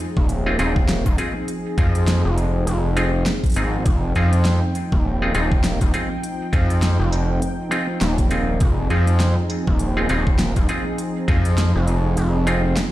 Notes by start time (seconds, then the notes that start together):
Already playing: F3 C4 D#4 G#4
0.17 D#1, kick
0.29 closed hi-hat
0.46 C4 D#4 F4 G#4
0.59 D#1 C4 D#4 F4 G#4, closed hi-hat
0.76 kick
0.89 snare, closed hi-hat
1.06 D#1, kick, closed hi-hat
1.18 C4 D#4 F4 G#4, closed hi-hat
1.48 closed hi-hat
1.78 F2 C4 D#4 F4 G#4, kick, closed hi-hat
1.95 closed hi-hat
2.08 snare, closed hi-hat
2.25 F1
2.38 closed hi-hat
2.67 F1, closed hi-hat
2.97 C4 D#4 F4 G#4, closed hi-hat
3.26 snare, closed hi-hat
3.44 kick, closed hi-hat
3.46 closed hi-hat
3.50 closed hi-hat
3.52 closed hi-hat
3.54 closed hi-hat
3.56 G#1 C4 D#4 F4 G#4, closed hi-hat
3.85 F1 G5, kick, closed hi-hat
4.15 F2 C4 D#4 F4 G#4, closed hi-hat
4.33 closed hi-hat
4.45 snare, closed hi-hat
4.75 closed hi-hat
4.92 D#1, kick
5.22 C4 D#4 F4 G#4
5.35 D#1 C4 D#4 F4 G#4, closed hi-hat
5.52 kick
5.64 snare, closed hi-hat
5.81 D#1, kick, closed hi-hat
5.94 C4 D#4 F4 G#4, closed hi-hat
6.24 closed hi-hat
6.53 F2 C4 D#4 F4 G#4, kick, closed hi-hat
6.70 closed hi-hat
6.82 snare, closed hi-hat
7.00 F1
7.12 closed hi-hat
7.42 closed hi-hat
7.71 C4 D#4 F4 G#4, closed hi-hat
8.01 D#1, snare, closed hi-hat
8.18 kick, closed hi-hat
8.31 C4 D#4 F4 G#4, closed hi-hat
8.60 F1 G#4, kick, closed hi-hat
8.90 F2 C4 D#4 F4 G#4, closed hi-hat
9.07 closed hi-hat
9.20 snare, closed hi-hat
9.50 closed hi-hat
9.67 D#1, kick
9.79 closed hi-hat
9.97 C4 D#4 F4 G#4
10.09 D#1 C4 D#4 F4 G#4, closed hi-hat
10.27 kick
10.39 snare, closed hi-hat
10.56 D#1, kick, closed hi-hat
10.69 C4 D#4 F4 G#4, closed hi-hat
10.98 closed hi-hat
11.28 F2 C4 D#4 F4 G#4, kick, closed hi-hat
11.45 closed hi-hat
11.58 snare, closed hi-hat
11.75 F1
11.88 closed hi-hat
12.17 F1, closed hi-hat
12.47 C4 D#4 F4 G#4, closed hi-hat
12.77 snare, closed hi-hat